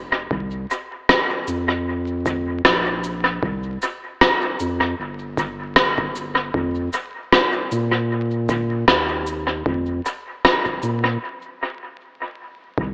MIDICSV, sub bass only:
0, 0, Header, 1, 2, 480
1, 0, Start_track
1, 0, Tempo, 779221
1, 190, Time_signature, 4, 2, 24, 8
1, 7970, End_track
2, 0, Start_track
2, 0, Title_t, "Sub bass"
2, 0, Program_c, 0, 38
2, 0, Note_on_c, 0, 29, 90
2, 168, Note_off_c, 0, 29, 0
2, 191, Note_on_c, 0, 36, 96
2, 404, Note_off_c, 0, 36, 0
2, 907, Note_on_c, 0, 41, 86
2, 1608, Note_off_c, 0, 41, 0
2, 1630, Note_on_c, 0, 34, 77
2, 2089, Note_off_c, 0, 34, 0
2, 2112, Note_on_c, 0, 36, 98
2, 2325, Note_off_c, 0, 36, 0
2, 2833, Note_on_c, 0, 41, 86
2, 3046, Note_off_c, 0, 41, 0
2, 3072, Note_on_c, 0, 31, 87
2, 4010, Note_off_c, 0, 31, 0
2, 4031, Note_on_c, 0, 41, 100
2, 4245, Note_off_c, 0, 41, 0
2, 4752, Note_on_c, 0, 46, 88
2, 5450, Note_off_c, 0, 46, 0
2, 5472, Note_on_c, 0, 39, 78
2, 5930, Note_off_c, 0, 39, 0
2, 5951, Note_on_c, 0, 41, 97
2, 6165, Note_off_c, 0, 41, 0
2, 6669, Note_on_c, 0, 46, 87
2, 6884, Note_off_c, 0, 46, 0
2, 7871, Note_on_c, 0, 36, 98
2, 7970, Note_off_c, 0, 36, 0
2, 7970, End_track
0, 0, End_of_file